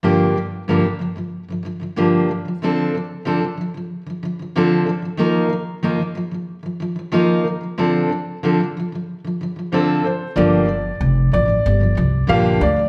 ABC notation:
X:1
M:4/4
L:1/16
Q:1/4=93
K:Gm
V:1 name="Upright piano"
z16 | z16 | z16 | z12 c2 c2 |
d6 d6 f2 d2 |]
V:2 name="Steel-string acoustic guitar" clef=bass
[G,,D,F,B,DG]2 [G,,D,F,]2 [G,,D,F,B,DG] [G,,D,F,] [G,,D,F,] [G,,D,F,]2 [G,,D,F,] [G,,D,F,] [G,,D,F,] [G,,D,F,B,DG]2 [D,F,] [D,F,] | [D,F,CDA]2 [D,F,]2 [D,F,CDA] [D,F,] [D,F,] [D,F,]2 [D,F,] [D,F,] [D,F,] [D,F,CDA]2 [E,F,] [E,F,] | [E,F,B,EB]2 [E,F,]2 [E,F,B,EB] [E,F,] [E,F,] [E,F,]2 [E,F,] [E,F,] [E,F,] [E,F,B,EB]2 [D,F,] [D,F,] | [D,F,CDA]2 [D,F,]2 [D,F,CDA] [D,F,] [D,F,] [D,F,]2 [D,F,] [D,F,] [D,F,] [D,F,CDA]2 [D,F,]2 |
[G,,D,F,B,DG]2 [G,,D,F,]2 z2 [G,,D,F,] [G,,D,F,]2 [G,,D,F,] [G,,D,F,]2 [G,,D,F,B,DG]2 [D,F,] [D,F,] |]
V:3 name="Upright bass" clef=bass
z16 | z16 | z16 | z16 |
G,,,4 F,,,2 A,,,2 G,,,2 C,,2 B,,,2 D,,2 |]